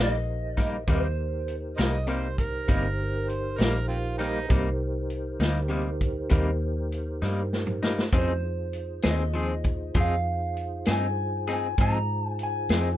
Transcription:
Already playing: fingered electric bass A#1, clean electric guitar D#4, tonewheel organ D#4 G4 A#4 C5
0.00 clean electric guitar G3 A#3 D#5
0.57 clean electric guitar G3 A#3 D#4, kick, snare, closed hi-hat
0.87 fingered electric bass D#2, clean electric guitar C3 G3 A#3 D#4, tonewheel organ D#4 G4 A#4 C5, kick, closed hi-hat
0.94 clean electric guitar C5
1.48 closed hi-hat
1.77 fingered electric bass C2, clean electric guitar G3 A#3 D#4, harmonica A#4 C5 D#5, snare, closed hi-hat
2.07 clean electric guitar C3 G3 A#3 D#4, harmonica C5
2.38 harmonica A#4, kick, closed hi-hat
2.68 fingered electric bass G1, clean electric guitar C3 G3 A#3 D#4, kick, closed hi-hat
3.29 harmonica C5, closed hi-hat
3.58 fingered electric bass A#1, clean electric guitar G3 A#3 D#4, harmonica A#4, snare, closed hi-hat
3.88 harmonica C4 F4
4.18 clean electric guitar G3 A#3 D#4, harmonica A#3 C4 D#4, closed hi-hat
4.48 fingered electric bass C2, clean electric guitar C3 G3 A#3 D#4, tonewheel organ D#4 G4 A#4 C5, kick, closed hi-hat
5.10 closed hi-hat
5.40 fingered electric bass D2, clean electric guitar G3 A#3 D#4, snare, closed hi-hat
5.68 clean electric guitar C3 G3 A#3 D#4
6.01 kick, closed hi-hat
6.30 fingered electric bass D#2, clean electric guitar C3 G3 A#3 D#4, kick, closed hi-hat
6.92 closed hi-hat
7.22 fingered electric bass G2, clean electric guitar G3 A#3 D#4, snare
7.53 snare
7.67 mid tom
7.83 clean electric guitar G3 A#3 D#4, snare
7.99 snare
8.12 fingered electric bass F2, clean electric guitar F3 C4 D#4 G#4, tonewheel organ A3 C#4 E4 F#4, kick, closed hi-hat
8.18 clean electric guitar C5
8.44 tonewheel organ D#4 F4 G#4 C5
8.73 closed hi-hat
9.02 fingered electric bass D#2, clean electric guitar C4 D#4 G#4, snare, closed hi-hat
9.11 clean electric guitar D#5
9.34 clean electric guitar F3 C4 D#4 G#4
9.64 kick, closed hi-hat
9.94 fingered electric bass F2, clean electric guitar F3 C4 D#4 G#4, kick, closed hi-hat
10.00 clean electric guitar F5
10.57 closed hi-hat
10.85 fingered electric bass G2, clean electric guitar D#4 G#4, snare, closed hi-hat
10.90 clean electric guitar C4 G#5
11.47 clean electric guitar C4 D#4 G#4, snare, closed hi-hat
11.53 clean electric guitar G#5
11.78 fingered electric bass G#2, clean electric guitar F3 C4 D#4 G#4, tonewheel organ D#4 F4 G#4 C5, kick, closed hi-hat
11.82 clean electric guitar A#5
12.28 clean electric guitar G#5
12.39 closed hi-hat
12.43 clean electric guitar G#5
12.69 fingered electric bass F2, clean electric guitar D#4 G#4, snare, closed hi-hat
12.73 clean electric guitar C4

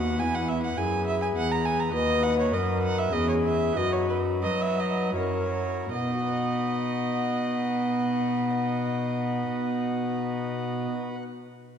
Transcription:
Already playing: pipe organ D#2 B3 F#4 B4, cello D#2, flute F#4, violin F#5
0.16 cello E2, pipe organ B3 E4 B4, flute E4, violin G#5
0.21 pipe organ E2
0.35 violin F#5
0.48 violin E5
0.63 violin F#5
0.77 cello F#2, pipe organ F#2, flute G#4, violin G#5
1.07 violin E5
1.22 violin G#5
1.36 pipe organ E2, cello E2, violin F#5
1.51 violin A#5
1.65 violin G#5
1.80 violin A#5
1.89 pipe organ D#4 F#4 B4
1.93 pipe organ D#2, cello D#2, flute B4, violin D#5
2.23 violin F#5
2.39 violin C#5
2.52 cello F#2, pipe organ F#2, flute A#4, violin D#5
2.83 violin F#5
2.98 violin E5
3.08 pipe organ C#4 G#4 B4
3.12 pipe organ E2, cello E2, flute G#4, violin D#5
3.29 violin C#5
3.45 violin E5
3.72 pipe organ D#4 F#4 B4
3.76 pipe organ F#2, cello F#2, flute F#4, violin D#5
3.92 violin C#5
4.09 violin B4
4.43 pipe organ F#3, cello F#3, flute B4, violin D#5
4.61 violin E5
4.79 violin D#5
5.10 pipe organ E4 F#4 A#4
5.15 pipe organ F#2, cello F#2, flute A#4, violin C#5
5.92 cello B2, pipe organ B2, violin D#5, flute F#5
6.00 pipe organ B3
6.07 pipe organ D#4
6.14 pipe organ F#4
6.20 pipe organ B4
6.28 pipe organ F#5

